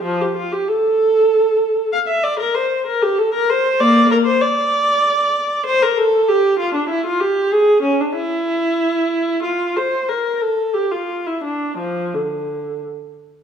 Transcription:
\new Staff \with { instrumentName = "Viola" } { \time 3/4 \key d \minor \tempo 4 = 95 f16 g'16 f'16 g'16 a'2 | f''16 e''16 d''16 bes'16 c''8 bes'16 g'16 a'16 bes'16 c''8 | <bes d''>8 bes'16 c''16 d''2 | c''16 bes'16 a'8 g'8 f'16 d'16 e'16 f'16 g'8 |
gis'8 cis'16 d'16 e'2 | f'8 c''8 bes'8 a'8 g'16 f'8 e'16 | d'8 f8 d4 r4 | }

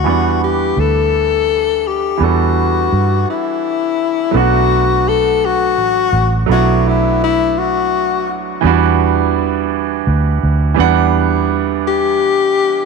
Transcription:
<<
  \new Staff \with { instrumentName = "Tenor saxophone" } { \time 6/8 \key e \minor \tempo 4. = 56 fis'8 g'8 a'4. g'8 | fis'4. e'4. | fis'4 a'8 fis'4. | fis'8 e'8 e'8 fis'4 r8 |
r2. | r4. g'4. | }
  \new Staff \with { instrumentName = "Grand piano" } { \time 6/8 \key e \minor <e g b d' fis''>2. | <e g b d' a'>2. | <fis a b d' fis'>2. | <fis a b d' e'>2. |
<e g b d' fis'>2. | <e g b d' fis''>2. | }
  \new Staff \with { instrumentName = "Fingered electric bass" } { \clef bass \time 6/8 \key e \minor e,4 d,2 | e,4 g,8 r4. | b,,2 a,,8 a,,8 | b,,2. |
e,2 d,8 d,8 | e,2. | }
>>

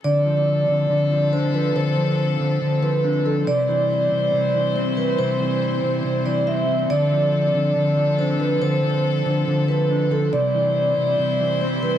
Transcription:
<<
  \new Staff \with { instrumentName = "Vibraphone" } { \time 4/4 \key d \dorian \tempo 4 = 140 d''2. c''8 b'8 | c''2~ c''8 b'4 a'8 | d''2. c''8 b'8 | c''2~ c''8 d''8 e''4 |
d''2. c''8 b'8 | c''2~ c''8 b'4 a'8 | d''2. c''8 b'8 | }
  \new Staff \with { instrumentName = "String section" } { \time 4/4 \key d \dorian << { <f d' a'>1~ | <f d' a'>1 | <g e' c''>1~ | <g e' c''>1 |
<f d' a'>1~ | <f d' a'>1 | <g e' c''>1 | } \\ { c'1~ | c'1~ | c'1~ | c'1~ |
c'1~ | c'1 | c'1 | } >> }
  \new Staff \with { instrumentName = "Clean electric guitar" } { \clef bass \time 4/4 \key d \dorian d8 f4 d8 d8 f8 d'8 f8 | d8 f4 d8 d8 f8 d'8 f8 | c8 e4 c8 c8 e8 c'8 e8 | c8 e4 c8 c8 e8 c'8 e8 |
d8 f4 d8 d8 f8 d'8 f8 | d8 f4 d8 d8 f8 d'8 f8 | c8 e4 c8 c8 e8 c'8 e8 | }
>>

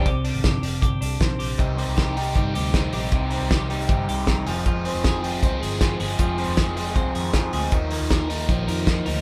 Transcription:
<<
  \new Staff \with { instrumentName = "Clean electric guitar" } { \time 4/4 \key c \minor \tempo 4 = 156 <c g'>8 d'8 g'8 d'8 g'8 d'8 c'8 g'8 | c8 c'8 g'8 ees'8 g8 g'8 ees'8 g'8 | c8 c'8 g'8 ees'8 g8 g'8 ees'8 f8 | f8 c'8 aes'8 f'8 c'8 aes'8 f'8 aes'8 |
f8 c'8 aes'8 f'8 c'8 aes'8 f'8 aes'8 | ees8 bes8 bes'8 ees'8 f8 bes'8 ees'8 bes'8 | }
  \new Staff \with { instrumentName = "Overdriven electric guitar" } { \time 4/4 \key c \minor r1 | <c g c' ees' g'>8 <c' ees' g'>8 <g c' ees' g'>8 <c' ees' g'>8 <c g c' ees' g'>8 <c' ees' g'>8 <g c' ees' g'>8 <c' ees' g'>8 | <c g c' ees' g'>8 <c' ees' g'>8 <g c' ees' g'>8 <c' ees' g'>8 <c g c' ees' g'>8 <c' ees' g'>8 <g c' ees' g'>8 <f aes c' aes'>8 | <f, c f aes c' aes'>8 <f aes c' aes'>8 <f aes c' aes'>8 <f aes c' aes'>8 <f, c f aes c' aes'>8 <f aes c' aes'>8 <f aes c' aes'>8 <f aes c' aes'>8 |
<f, c f aes c' aes'>8 <f aes c' aes'>8 <f aes c' aes'>8 <f aes c' aes'>8 <f, c f aes c' aes'>8 <f aes c' aes'>8 <f aes c' aes'>8 <f aes c' aes'>8 | <ees f bes ees'>8 <f bes ees'>8 <ees f bes ees'>8 <f bes ees'>8 <ees f bes ees'>8 <f bes ees'>8 <ees f bes ees'>8 <f bes ees'>8 | }
  \new Staff \with { instrumentName = "Fingered electric bass" } { \clef bass \time 4/4 \key c \minor c,8. aes,,16 g,,8 f,,8 g,,8 c,8 bes,,8 bes,,8 | c,8. c,4~ c,16 g,,8 d,4 bes,,8 | c,8. c,4~ c,16 g,,8 c,4 f,,8~ | f,,8. f,,4~ f,,16 c,8 g,,4 g,,8 |
f,,8. f,,4~ f,,16 c,8 f,4 d,8 | ees,8. ees,4~ ees,16 bes,,8 f,4 d,8 | }
  \new DrumStaff \with { instrumentName = "Drums" } \drummode { \time 4/4 <hh bd>8 hho8 <hh bd sn>8 hho8 <hh bd>8 hho8 <hh bd sn>8 hho8 | <hh bd>8 hho8 <hh bd sn>8 hho8 <hh bd>8 hho8 <hh bd sn>8 hho8 | <hh bd>8 hho8 <hh bd sn>8 hho8 <hh bd>8 hho8 <hh bd sn>8 hho8 | <hh bd>8 hho8 <hh bd sn>8 hho8 <hh bd>8 hho8 <hh bd sn>8 hho8 |
<hh bd>8 hho8 <hh bd sn>8 hho8 <hh bd>8 hho8 <hh bd sn>8 hho8 | <hh bd>8 hho8 <hh bd sn>8 hho8 <hh bd>8 hho8 <hh bd sn>8 hho8 | }
>>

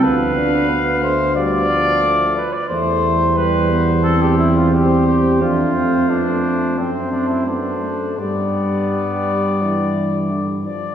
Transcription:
<<
  \new Staff \with { instrumentName = "Trumpet" } { \time 4/4 \key c \major \tempo 4 = 88 f''2 f''4. r8 | c''2. c''4 | c''2 c''4 c''4 | d''2.~ d''8 d''8 | }
  \new Staff \with { instrumentName = "Flugelhorn" } { \time 4/4 \key c \major b'4. c''8 d''4. b'16 d''16 | c''4 b'8. r16 a'16 g'16 e'16 f'16 g'8 g'8 | f'4 d'4 c'8 d'16 e'16 d'4 | b2.~ b8 r8 | }
  \new Staff \with { instrumentName = "French horn" } { \time 4/4 \key c \major f8 d'8 b8 a8 g8 f4 r8 | a4 g8 b8 c'2 | d'8 c'8 b8 a8 c'4 b8 a8 | g2.~ g8 r8 | }
  \new Staff \with { instrumentName = "Euphonium" } { \clef bass \time 4/4 \key c \major b2 b4 a8 r8 | g2. g4 | a2 a4 a4 | g4 g4 e4 d8 f8 | }
  \new Staff \with { instrumentName = "Tuba" } { \clef bass \time 4/4 \key c \major d,2.~ d,8 r8 | e,1 | f,2 fis,2 | g,2.~ g,8 r8 | }
>>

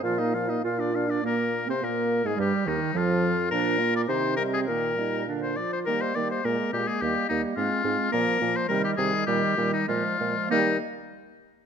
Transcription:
<<
  \new Staff \with { instrumentName = "Flute" } { \time 2/4 \key ees \major \tempo 4 = 103 f''4 r4 | bes'8. c''16 bes'8. aes'16 | g'8 ees'8 f'4 | d''8 f''8 c''8 ees''8 |
g''8 ees''8 f''8 d''8 | ees''8 ees''8 d''8 d''8 | ees''8 ees''8 f''8 f''8 | d''8 d''8 ees''8 ees''8 |
ees''8 ees''8 d''8 d''8 | ees''8 r4. | }
  \new Staff \with { instrumentName = "Oboe" } { \time 2/4 \key ees \major f''16 ees''16 f''16 ees''16 f''16 d''16 f''16 d''16 | bes'8. c''16 bes'8. aes'16 | g'8 ees'8 f'4 | bes'8. d''16 c''8 bes'16 aes'16 |
bes'4 r16 c''16 d''16 c''16 | bes'16 c''16 d''16 c''16 bes'8 g'16 aes'16 | g'8 ees'8 f'4 | bes'8. c''16 bes'16 g'16 aes'8 |
g'8. ees'16 f'4 | ees'8 r4. | }
  \new Staff \with { instrumentName = "Clarinet" } { \time 2/4 \key ees \major f'16 ees'16 f'16 ees'16 f'16 d'16 f'16 d'16 | bes8. c'16 bes8. aes16 | g8 ees8 f4 | d'8 f'8 ees'8 c'8 |
bes8 ees'8 d'8 f'8 | bes8 bes8 bes8 bes8 | bes8 bes8 c'8 c'8 | bes8 bes8 g8 g8 |
g8 g8 aes8 aes8 | bes8 r4. | }
  \new Staff \with { instrumentName = "French horn" } { \clef bass \time 2/4 \key ees \major f16 bes16 f16 bes16 f'8 d'8 | bes8. c'16 bes8. aes16 | g8 ees8 f4 | f8 bes8 ees8 g8 |
ees8 g8 d8 f8 | g8 g8 aes8 aes8 | g8 g8 aes8 aes8 | f8 f8 ees8 ees8 |
ees8 ees8 f8 f8 | g8 r4. | }
  \new Staff \with { instrumentName = "Bassoon" } { \clef bass \time 2/4 \key ees \major bes,4 bes,4 | bes,8. c16 bes,8. aes,16 | g,8 ees,8 f,4 | bes,4 c4 |
bes,4. r8 | ees8 ees8 bes,8 bes,8 | ees,8 ees,8 aes,8 aes,8 | bes,8 bes,8 c8 c8 |
bes,8 bes,8 bes,8 bes,8 | ees8 r4. | }
>>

